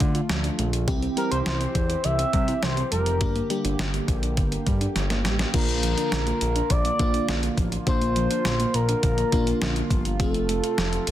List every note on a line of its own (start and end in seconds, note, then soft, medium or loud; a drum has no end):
0.00 0.84 D3 medium
0.00 0.21 D3 loud
0.00 0.84 A3 medium
0.00 0.12 A3 medium
0.00 0.84 F4 medium
0.00 kick medium
0.00 closed hi-hat medium
0.15 0.27 F4 medium
0.15 closed hi-hat medium
0.29 0.50 D2 loud
0.29 0.41 F3 medium
0.29 snare loud
0.29 closed hi-hat medium
0.44 0.56 D4 medium
0.44 closed hi-hat soft
0.59 0.89 A#1 loud
0.59 0.71 A3 medium
0.59 closed hi-hat medium
0.73 closed hi-hat soft
0.88 1.08 C2 loud
0.88 1.00 E3 medium
0.88 3.19 E3 medium
0.88 1.03 C4 medium
0.88 3.19 C4 medium
0.88 1.03 E4 medium
0.88 1.03 G4 medium
0.88 5.50 G4 medium
0.88 kick loud
0.88 closed hi-hat medium
1.02 1.14 C4 medium
1.02 closed hi-hat soft
1.17 1.29 G3 medium
1.17 1.76 C4 medium
1.17 1.76 E4 medium
1.17 1.76 G4 medium
1.17 1.30 A#4 medium
1.17 closed hi-hat medium
1.31 1.42 C2 medium
1.31 1.43 E4 medium
1.31 1.38 C5 medium
1.31 closed hi-hat medium
1.46 1.67 C2 loud
1.46 1.58 E3 medium
1.46 2.06 C5 loud
1.46 snare loud
1.46 closed hi-hat medium
1.61 1.73 C4 medium
1.61 closed hi-hat soft
1.75 1.95 E2 medium
1.75 kick medium
1.75 closed hi-hat medium
1.90 2.02 E4 medium
1.90 closed hi-hat medium
2.04 2.25 C2 loud
2.04 2.16 E3 medium
2.04 2.64 E5 loud
2.04 closed hi-hat medium
2.19 2.31 C4 medium
2.19 closed hi-hat medium
2.33 2.54 C3 loud
2.33 2.45 G3 medium
2.33 kick medium
2.33 closed hi-hat medium
2.48 2.60 E4 medium
2.48 closed hi-hat soft
2.62 2.83 C2 loud
2.62 2.74 E3 medium
2.62 2.91 C5 loud
2.62 snare loud
2.62 closed hi-hat medium
2.77 2.89 C4 medium
2.77 closed hi-hat soft
2.91 3.22 F1 medium
2.91 3.04 G3 medium
2.91 3.75 A#4 medium
2.91 closed hi-hat medium
3.06 closed hi-hat soft
3.21 3.41 G1 loud
3.21 5.52 D3 medium
3.21 3.33 D3 medium
3.21 3.36 A#3 medium
3.21 5.52 A#3 medium
3.21 3.36 D4 medium
3.21 3.36 G4 medium
3.21 kick loud
3.21 closed hi-hat medium
3.35 3.47 A#3 medium
3.35 closed hi-hat soft
3.50 3.62 G3 medium
3.50 4.09 A#3 medium
3.50 4.09 D4 medium
3.50 4.09 G4 medium
3.50 closed hi-hat medium
3.65 3.75 G1 loud
3.65 3.76 D4 loud
3.65 closed hi-hat medium
3.79 4.00 G1 medium
3.79 3.91 D3 medium
3.79 snare loud
3.79 closed hi-hat medium
3.94 4.06 A#3 medium
3.94 closed hi-hat soft
4.08 4.39 A#1 medium
4.08 kick medium
4.08 closed hi-hat medium
4.23 4.35 D4 medium
4.23 closed hi-hat medium
4.37 4.58 G1 loud
4.37 4.49 D3 medium
4.37 kick medium
4.37 closed hi-hat medium
4.52 4.64 A#3 medium
4.52 closed hi-hat soft
4.66 4.87 G2 loud
4.66 4.78 G3 medium
4.66 kick medium
4.66 closed hi-hat medium
4.81 4.93 D4 medium
4.81 closed hi-hat soft
4.96 5.26 G1 loud
4.96 5.08 D3 medium
4.96 snare medium
4.96 closed hi-hat medium
5.10 5.22 A#3 medium
5.10 snare medium
5.10 closed hi-hat soft
5.25 5.45 A1 medium
5.25 5.37 G3 medium
5.25 snare medium
5.25 closed hi-hat medium
5.39 snare medium
5.39 closed hi-hat soft
5.54 5.95 A#1 loud
5.54 5.66 D3 medium
5.54 10.16 D3 medium
5.54 6.13 A#3 medium
5.54 10.16 A#3 medium
5.54 6.13 D4 medium
5.54 6.13 F4 medium
5.54 11.11 F4 medium
5.54 6.72 A#4 loud
5.54 kick loud
5.54 closed hi-hat medium
5.54 crash medium
5.68 5.80 A#3 medium
5.68 closed hi-hat soft
5.83 5.95 F3 medium
5.83 closed hi-hat medium
5.97 6.09 D4 loud
5.97 closed hi-hat medium
6.12 6.32 A#1 loud
6.12 6.24 D3 medium
6.12 snare loud
6.12 closed hi-hat medium
6.27 6.39 A#3 medium
6.27 closed hi-hat soft
6.41 6.62 A#1 loud
6.41 closed hi-hat medium
6.56 6.68 D4 medium
6.56 closed hi-hat medium
6.70 6.91 A#1 loud
6.70 6.82 D3 medium
6.70 7.58 D5 loud
6.70 kick medium
6.70 closed hi-hat medium
6.85 6.97 A#3 medium
6.85 closed hi-hat medium
6.99 7.20 A#1 loud
6.99 7.12 F3 medium
6.99 7.44 A#3 medium
6.99 7.44 D4 medium
6.99 7.44 F4 medium
6.99 kick medium
6.99 closed hi-hat medium
7.14 7.26 D4 medium
7.14 closed hi-hat medium
7.29 7.49 A#1 loud
7.29 7.41 D3 medium
7.29 snare loud
7.29 closed hi-hat medium
7.43 7.55 A#3 medium
7.43 closed hi-hat soft
7.57 7.78 A1 loud
7.57 7.70 F3 medium
7.57 kick medium
7.57 closed hi-hat medium
7.72 closed hi-hat soft
7.87 8.28 A#1 loud
7.87 7.99 D3 medium
7.87 8.46 A#3 medium
7.87 8.46 D4 medium
7.87 8.46 F4 medium
7.87 8.76 C5 loud
7.87 kick loud
7.87 closed hi-hat medium
8.01 8.13 A#3 medium
8.01 closed hi-hat soft
8.16 8.28 F3 medium
8.16 closed hi-hat medium
8.31 8.43 D4 loud
8.31 closed hi-hat medium
8.45 8.65 A#1 loud
8.45 8.57 D3 medium
8.45 snare loud
8.45 closed hi-hat medium
8.60 8.72 A#3 medium
8.60 closed hi-hat soft
8.74 8.95 A#1 loud
8.74 9.91 A#4 loud
8.74 closed hi-hat medium
8.89 9.01 D4 medium
8.89 closed hi-hat medium
9.03 9.24 A#1 loud
9.03 9.15 D3 medium
9.03 kick medium
9.03 closed hi-hat medium
9.18 9.30 A#3 medium
9.18 closed hi-hat medium
9.32 9.53 A#1 loud
9.32 9.44 F3 medium
9.32 9.77 A#3 medium
9.32 9.77 D4 medium
9.32 9.77 F4 medium
9.32 kick medium
9.32 closed hi-hat medium
9.47 9.59 D4 medium
9.47 closed hi-hat medium
9.61 9.82 A#1 loud
9.61 9.73 D3 medium
9.61 snare loud
9.61 closed hi-hat medium
9.76 9.88 A#3 medium
9.76 closed hi-hat soft
9.90 10.21 G1 loud
9.90 10.03 F3 medium
9.90 kick medium
9.90 closed hi-hat medium
10.05 closed hi-hat soft
10.20 10.61 F1 loud
10.20 11.11 C3 medium
10.20 10.32 F3 medium
10.20 10.79 A3 medium
10.20 11.11 A3 medium
10.20 10.79 C4 medium
10.20 10.79 F4 medium
10.20 11.11 A4 loud
10.20 kick loud
10.20 closed hi-hat medium
10.34 10.46 C4 medium
10.34 closed hi-hat soft
10.49 10.61 A3 medium
10.49 closed hi-hat medium
10.63 10.75 F4 loud
10.63 closed hi-hat medium
10.78 10.98 F1 loud
10.78 10.90 F3 medium
10.78 snare loud
10.78 closed hi-hat medium
10.93 11.04 C4 medium
10.93 closed hi-hat soft
11.07 11.11 F1 loud
11.07 closed hi-hat medium